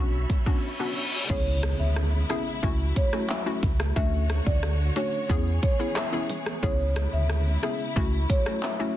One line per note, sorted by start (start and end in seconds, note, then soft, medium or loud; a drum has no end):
0.00 0.26 B1 loud
0.00 0.17 B3 medium
0.00 0.17 C#4 medium
0.00 0.17 D4 medium
0.00 0.17 F#4 loud
0.00 1.26 F#4 medium
0.00 1.26 C#5 medium
0.00 1.26 E5 medium
0.00 1.26 B5 medium
0.00 reverse cymbal medium
0.13 shaker medium
0.30 kick loud
0.30 closed hi-hat medium
0.30 high bongo medium
0.30 shaker medium
0.46 0.67 B3 medium
0.46 0.67 C#4 medium
0.46 0.67 D4 medium
0.46 0.67 F#4 medium
0.46 kick medium
0.46 shaker medium
0.80 1.01 B3 medium
0.80 1.01 C#4 medium
0.80 1.01 D4 medium
0.80 1.01 F#4 medium
1.30 1.74 C#2 loud
1.30 2.62 C#3 medium
1.30 2.62 G#3 medium
1.30 2.22 B3 loud
1.30 2.62 B3 medium
1.30 2.22 C#4 medium
1.30 3.94 E4 medium
1.30 2.22 E4 medium
1.30 2.22 G#4 loud
1.30 1.42 C#5 loud
1.30 kick loud
1.30 crash loud
1.30 impact medium
1.30 high bongo medium
1.30 shaker medium
1.47 shaker medium
1.63 cross-stick medium
1.63 closed hi-hat medium
1.63 high bongo medium
1.63 shaker medium
1.80 2.24 D2 medium
1.80 1.92 E5 medium
1.80 shaker medium
1.96 cross-stick loud
1.96 high bongo medium
1.96 shaker medium
2.13 shaker medium
2.29 2.60 B3 medium
2.29 2.60 C#4 medium
2.29 2.61 E4 medium
2.29 2.61 G#4 medium
2.29 2.42 E5 medium
2.29 cross-stick medium
2.29 closed hi-hat medium
2.29 shaker medium
2.47 shaker medium
2.63 2.93 C#2 loud
2.63 3.95 F#3 medium
2.63 2.84 A3 loud
2.63 5.27 A3 medium
2.63 2.84 C#4 medium
2.63 2.84 E4 medium
2.63 2.84 F#4 loud
2.63 kick medium
2.63 high bongo medium
2.63 shaker medium
2.80 shaker medium
2.96 3.09 C#5 medium
2.96 kick loud
2.96 closed hi-hat medium
2.96 shaker medium
3.13 3.34 A3 medium
3.13 3.34 C#4 medium
3.13 3.34 E4 medium
3.13 3.34 F#4 medium
3.13 cross-stick medium
3.13 shaker medium
3.29 3.77 E5 medium
3.29 clap loud
3.29 shaker medium
3.46 3.67 A3 medium
3.46 3.67 C#4 medium
3.46 3.67 E4 medium
3.46 3.67 F#4 medium
3.46 shaker soft
3.63 3.93 C#2 medium
3.63 kick loud
3.63 closed hi-hat medium
3.63 low bongo medium
3.63 shaker medium
3.80 cross-stick loud
3.80 high bongo medium
3.80 shaker medium
3.96 4.41 D2 loud
3.96 5.28 D3 medium
3.96 4.88 A3 loud
3.96 4.88 C#4 medium
3.96 4.88 D4 medium
3.96 5.28 F#4 medium
3.96 4.89 F#4 loud
3.96 6.60 C#5 medium
3.96 4.08 E5 loud
3.96 kick loud
3.96 high bongo medium
3.96 shaker medium
4.13 shaker medium
4.30 cross-stick loud
4.30 closed hi-hat medium
4.30 high bongo medium
4.30 shaker medium
4.46 4.91 D2 medium
4.46 4.58 D5 medium
4.46 kick medium
4.46 shaker medium
4.63 cross-stick loud
4.63 high bongo medium
4.63 shaker medium
4.80 shaker medium
4.96 5.27 A3 medium
4.96 5.27 C#4 medium
4.96 5.27 D4 medium
4.96 5.27 F#4 medium
4.96 5.08 C#5 medium
4.96 closed hi-hat medium
4.96 shaker medium
5.13 shaker medium
5.29 5.59 E2 loud
5.29 6.62 E3 medium
5.29 5.50 B3 loud
5.29 7.94 B3 medium
5.29 5.51 C#4 medium
5.29 5.51 E4 medium
5.29 6.62 G#4 medium
5.29 5.51 G#4 loud
5.29 kick medium
5.29 high bongo medium
5.29 shaker medium
5.46 shaker medium
5.63 5.75 C#5 medium
5.63 kick loud
5.63 closed hi-hat medium
5.63 shaker medium
5.79 6.00 B3 medium
5.79 6.01 C#4 medium
5.79 6.01 E4 medium
5.79 6.01 G#4 medium
5.79 shaker medium
5.96 6.43 E5 medium
5.96 cross-stick loud
5.96 clap loud
5.96 shaker medium
6.12 6.34 B3 medium
6.12 6.34 C#4 medium
6.12 6.34 E4 medium
6.12 6.34 G#4 medium
6.12 shaker soft
6.29 closed hi-hat medium
6.29 low bongo medium
6.29 shaker medium
6.46 cross-stick loud
6.46 high bongo medium
6.46 shaker medium
6.63 7.07 C#2 loud
6.63 7.95 C#3 medium
6.63 7.95 G#3 medium
6.63 7.55 B3 loud
6.63 7.55 C#4 medium
6.63 7.55 E4 medium
6.63 8.97 E4 medium
6.63 7.55 G#4 loud
6.63 6.75 C#5 loud
6.63 kick loud
6.63 high bongo medium
6.63 shaker loud
6.80 shaker medium
6.96 cross-stick loud
6.96 closed hi-hat medium
6.96 high bongo medium
6.96 shaker medium
7.13 7.57 D2 medium
7.13 7.25 E5 medium
7.13 shaker medium
7.30 cross-stick loud
7.30 high bongo medium
7.30 shaker medium
7.46 shaker medium
7.63 7.94 B3 medium
7.63 7.94 C#4 medium
7.63 7.94 E4 medium
7.63 7.94 G#4 medium
7.63 7.75 E5 medium
7.63 cross-stick medium
7.63 closed hi-hat medium
7.63 shaker medium
7.80 shaker medium
7.96 8.26 C#2 loud
7.96 8.97 F#3 medium
7.96 8.17 A3 loud
7.96 8.97 A3 medium
7.96 8.17 C#4 medium
7.96 8.17 E4 medium
7.96 8.17 F#4 loud
7.96 kick medium
7.96 high bongo medium
7.96 shaker medium
8.13 shaker medium
8.30 8.42 C#5 medium
8.30 kick loud
8.30 closed hi-hat medium
8.30 shaker medium
8.46 8.67 A3 medium
8.46 8.67 C#4 medium
8.46 8.67 E4 medium
8.46 8.67 F#4 medium
8.46 cross-stick loud
8.46 shaker medium
8.63 8.97 E5 medium
8.63 clap loud
8.63 shaker medium
8.79 8.97 A3 medium
8.79 8.97 C#4 medium
8.79 8.97 E4 medium
8.79 8.97 F#4 medium
8.79 shaker medium